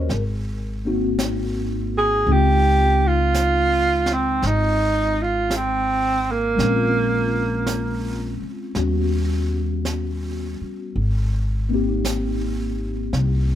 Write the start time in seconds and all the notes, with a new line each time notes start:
Already playing: C#4 F4 F#4 A#4 C5 C#5 D#5
0.09 G#1, brush sweep, snare
0.85 A#3 C4 D#4 F#4
1.19 brush sweep, snare, hi-hat pedal
1.98 G#4
2.26 C#2 G#3 C4 D#4 F4, brush sweep
2.32 G4
3.07 F4
3.34 brush sweep, snare, hi-hat pedal
4.06 snare
4.13 C4
4.42 G#1, brush sweep, snare
4.47 D#4
5.22 F4
5.51 brush sweep, snare, hi-hat pedal
5.56 C4
6.31 A#3
6.55 A#1 G#3 C4, brush sweep, snare
6.63 C#4 F4
7.67 brush sweep, snare, hi-hat pedal
8.42 muted upright bass stroke
8.75 D#2 G3 B3 C#4 F#4, brush sweep, snare
9.85 brush sweep, snare, hi-hat pedal
10.61 muted upright bass stroke
10.95 G#1, brush sweep
11.69 A#3 C4 D#4
11.74 G4
12.05 brush sweep, snare, hi-hat pedal
13.13 C2, brush sweep, snare